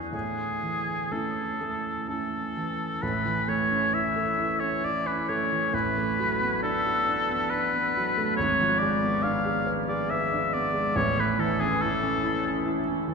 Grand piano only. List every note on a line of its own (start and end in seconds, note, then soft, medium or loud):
0.00 0.10 E2 soft
0.00 0.16 D4 soft
0.00 0.16 E4 soft
0.12 2.98 A2 soft
0.63 1.41 E3 soft
1.11 1.56 A3 soft
1.11 1.56 C#4 soft
1.11 1.57 E4 soft
1.61 2.07 A3 soft
2.09 2.52 A3 soft
2.09 2.52 C#4 soft
2.09 2.53 E4 soft
2.57 3.03 E3 soft
3.03 5.69 A1 soft
3.03 5.69 A2 soft
3.25 3.62 E3 soft
3.48 3.84 A3 soft
3.71 4.07 C#4 soft
3.94 4.29 E4 soft
4.16 4.52 A4 soft
4.39 4.74 E4 soft
4.60 4.96 C#4 soft
4.83 5.19 E4 soft
5.06 5.42 C#4 soft
5.29 5.65 A3 soft
5.52 5.74 E3 soft
5.73 8.33 A1 soft
5.73 8.33 A2 soft
5.97 6.32 A3 soft
6.20 6.54 F#3 soft
6.41 6.75 B3 soft
6.63 6.97 D4 soft
6.86 7.20 F#4 soft
7.06 7.41 D4 soft
7.30 7.64 B3 soft
7.52 7.86 D4 soft
7.74 8.07 B3 soft
7.97 8.30 F#3 soft
8.18 8.38 A3 soft
8.39 10.92 G#1 soft
8.39 10.93 G#2 medium
8.61 8.94 F3 soft
8.82 9.15 G#3 soft
9.03 9.36 B3 soft
9.24 9.58 D4 soft
9.45 9.79 G#4 soft
9.67 10.01 B4 soft
9.88 10.22 G#4 soft
10.10 10.44 B4 soft
10.32 10.66 D4 medium
10.54 10.88 B3 soft
10.74 10.95 G#3 soft
10.96 13.14 A1 medium
10.96 13.14 A2 medium
11.18 11.51 A3 soft
11.39 11.72 E3 soft
11.61 11.94 C#4 soft
11.82 12.15 E4 soft
12.03 12.36 C#4 medium
12.23 12.56 E4 soft
12.46 12.78 C#4 soft
12.66 12.98 E4 soft
12.87 13.14 C#4 medium
13.08 13.14 E3 medium